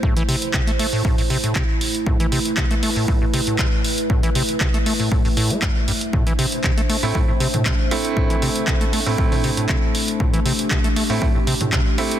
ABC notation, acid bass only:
X:1
M:4/4
L:1/16
Q:1/4=118
K:Am
V:1 name="Acid bass" clef=bass
A,, E, C, z C, A, A, A,, A,, A,, C, A,, C, z3 | A,, E, C, z C, A, A, A,, A,, A,, C, A,, C, z3 | A,, E, C, z C, A, A, A,, A,, A,, A,, A, G,, z G,, z | A,, E, C, z C, A, A, A,, A,, A,, C, A,, C, z3 |
A,, E, C, z C, A, A, A,, A,, A,, C, A,, C, z3 | A,, E, C, z C, A, A, A,, A,, A,, C, A,, C, z3 |]